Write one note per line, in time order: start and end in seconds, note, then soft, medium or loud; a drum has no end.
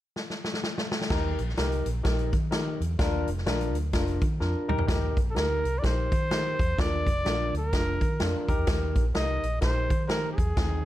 0.16 snare medium
0.30 snare medium
0.44 snare medium
0.54 snare medium
0.63 snare medium
0.78 snare medium
0.91 snare medium
1.01 snare medium
1.10 1.35 D#2 medium
1.10 1.39 D#4 medium
1.10 1.39 G4 medium
1.10 1.40 A#4 loud
1.10 kick loud
1.10 snare loud
1.10 crash medium
1.39 1.55 A#1 medium
1.39 closed hi-hat medium
1.49 snare soft
1.57 1.82 C2 medium
1.57 1.87 D#4 medium
1.57 1.87 G4 medium
1.57 1.87 A#4 medium
1.57 snare loud
1.57 closed hi-hat medium
1.72 closed hi-hat medium
1.86 2.02 A#1 medium
1.86 closed hi-hat medium
2.04 2.30 A#1 medium
2.04 2.33 D#4 medium
2.04 2.33 G4 medium
2.04 2.33 A#4 medium
2.04 kick medium
2.04 snare medium
2.04 closed hi-hat medium
2.19 closed hi-hat soft
2.33 2.74 D#3 medium
2.33 kick medium
2.33 closed hi-hat medium
2.51 2.81 D#4 medium
2.51 2.81 G4 medium
2.51 2.81 A#4 medium
2.51 snare loud
2.51 closed hi-hat medium
2.80 2.97 E2 medium
2.80 closed hi-hat medium
2.99 3.24 D#2 medium
2.99 3.28 D4 loud
2.99 3.28 F4 medium
2.99 3.28 A#4 loud
2.99 kick loud
2.99 snare loud
2.99 closed hi-hat medium
3.27 3.44 F1 medium
3.27 closed hi-hat medium
3.38 snare soft
3.46 3.74 A#1 medium
3.46 3.75 D4 medium
3.46 3.76 F4 medium
3.46 3.76 A#4 medium
3.46 snare loud
3.46 closed hi-hat medium
3.61 closed hi-hat medium
3.74 3.91 D2 medium
3.74 closed hi-hat medium
3.93 4.18 F1 medium
3.93 4.23 D4 medium
3.93 4.23 F4 medium
3.93 4.23 A#4 medium
3.93 kick medium
3.93 snare medium
3.93 closed hi-hat medium
4.08 closed hi-hat soft
4.21 4.39 D#3 medium
4.21 kick medium
4.21 closed hi-hat medium
4.40 4.54 F2 medium
4.40 4.69 D4 medium
4.40 4.69 F4 medium
4.40 4.68 A#4 medium
4.40 snare soft
4.68 4.78 D#2 medium
4.68 4.84 D#4 medium
4.68 4.85 G4 medium
4.68 4.85 A#4 medium
4.68 mid tom medium
4.78 4.87 E2 medium
4.78 floor tom medium
4.87 5.17 D#2 medium
4.87 5.17 D#4 medium
4.87 5.17 G4 medium
4.87 5.17 A#4 medium
4.87 kick loud
4.87 snare loud
4.87 closed hi-hat medium
5.17 5.34 A#1 medium
5.17 kick medium
5.17 closed hi-hat medium
5.31 5.64 D#4 medium
5.31 5.38 A4 soft
5.35 5.61 D2 medium
5.35 5.65 G4 medium
5.35 5.65 A#4 medium
5.35 5.80 A#4 medium
5.35 snare loud
5.35 closed hi-hat medium
5.64 5.81 C2 medium
5.64 closed hi-hat medium
5.79 6.12 D#4 medium
5.79 5.86 D5 medium
5.83 6.08 A#1 medium
5.83 6.12 G4 medium
5.83 6.12 A#4 medium
5.83 6.81 C5 medium
5.83 kick medium
5.83 snare medium
5.83 closed hi-hat medium
6.12 6.53 D#3 medium
6.12 kick medium
6.12 closed hi-hat medium
6.31 6.60 D#4 medium
6.31 6.60 G4 medium
6.31 6.60 A#4 medium
6.31 snare loud
6.31 closed hi-hat medium
6.59 6.76 E2 medium
6.59 kick medium
6.59 closed hi-hat medium
6.78 7.09 D#2 medium
6.78 7.07 D4 medium
6.78 7.07 F4 medium
6.78 7.07 A#4 medium
6.78 7.55 D5 loud
6.78 kick loud
6.78 snare loud
6.78 closed hi-hat medium
7.07 7.24 F1 medium
7.07 kick medium
7.07 closed hi-hat medium
7.24 7.50 A#1 medium
7.24 7.54 D4 medium
7.24 7.54 F4 medium
7.24 7.55 A#4 medium
7.24 snare loud
7.24 closed hi-hat medium
7.53 7.70 D2 medium
7.53 closed hi-hat medium
7.58 8.47 A#4 medium
7.73 7.98 F1 medium
7.73 8.02 D4 medium
7.73 8.02 F4 medium
7.73 8.02 A#4 medium
7.73 kick medium
7.73 snare medium
7.73 closed hi-hat medium
8.01 8.18 D#3 medium
8.01 kick medium
8.01 closed hi-hat medium
8.20 8.33 F2 medium
8.20 8.49 D4 medium
8.20 8.49 F4 medium
8.20 8.47 A#4 medium
8.20 snare loud
8.20 closed hi-hat medium
8.48 8.57 D#2 medium
8.48 9.04 D#4 medium
8.48 9.04 G4 medium
8.48 9.04 A#4 medium
8.48 kick medium
8.48 closed hi-hat medium
8.58 8.66 E2 medium
8.67 8.92 D#2 medium
8.67 kick loud
8.67 snare loud
8.67 closed hi-hat medium
8.96 9.12 A#1 medium
8.96 kick medium
8.96 closed hi-hat medium
9.14 9.40 C2 medium
9.14 9.44 D#4 medium
9.14 9.44 G4 medium
9.14 9.44 A#4 medium
9.14 9.59 D#5 medium
9.14 snare loud
9.14 closed hi-hat medium
9.43 9.60 A#1 medium
9.43 closed hi-hat medium
9.61 9.87 A#1 medium
9.61 9.91 D#4 medium
9.61 9.91 G4 medium
9.61 9.91 A#4 medium
9.61 10.06 C5 medium
9.61 kick medium
9.61 snare medium
9.61 closed hi-hat medium
9.90 10.32 D#3 medium
9.90 kick medium
9.90 closed hi-hat medium
10.06 10.38 D#4 medium
10.06 10.38 G4 medium
10.06 10.29 A#4 medium
10.06 10.10 C5 medium
10.06 10.38 C5 medium
10.06 snare loud
10.06 closed hi-hat medium
10.32 10.37 G4 medium
10.36 10.55 E2 medium
10.36 10.85 G#4 medium
10.36 kick medium
10.36 closed hi-hat medium
10.56 10.82 D#2 loud
10.56 10.85 C4 medium
10.56 10.85 D#4 medium
10.56 10.85 G#4 medium
10.56 kick loud
10.56 snare loud
10.56 closed hi-hat medium